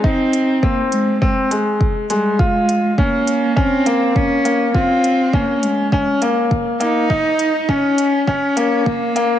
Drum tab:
HH |-x-x-x-x|-x-x-x-x|-x-x-x-x|-x-x-x-x|
BD |o-o-o-o-|o-o-o-o-|o-o-o-o-|o-o-o-o-|